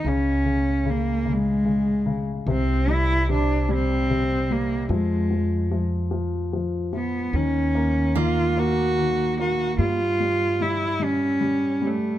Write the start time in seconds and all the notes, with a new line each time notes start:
0.05 C#2 C#3 C#4
0.45 C#3
0.85 C#3
0.90 A#3
1.25 C#3
1.32 G#3
1.65 C#3
2.06 C#3
2.47 C2 C3
2.52 C4
2.88 G3
2.92 E4
3.29 C3
3.33 D4
3.69 G3
3.74 C4
4.10 C3
4.51 G3 A#3
4.89 F2 F3 G#3
5.31 F3
5.71 F3
6.11 F3
6.53 F3
6.93 F3 B3
7.33 D#2 D#3 C#4
7.75 A#3
8.15 D#3 A#3 F4
8.57 A#3 F#4
8.99 D#3
9.40 A#3 F#4
9.79 G2 G3 F4
10.20 G3
10.61 G3 E4
11.00 G3
11.04 C#4
11.41 G3
11.82 G3
11.86 A3